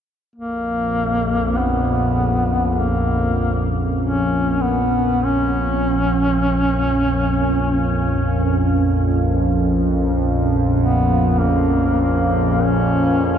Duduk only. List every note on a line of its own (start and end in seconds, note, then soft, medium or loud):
0.36 1.59 A#3 medium
1.57 2.74 B3 medium
2.74 2.80 B3 medium
2.78 3.76 A#3 medium
4.01 4.63 C#4 medium
4.61 5.26 B3 medium
5.24 7.70 C#4 loud
7.71 8.90 C#4 medium
10.78 11.41 B3 medium
11.40 12.01 A#3 medium
12.01 12.65 A#3 medium
12.64 13.38 C#4 medium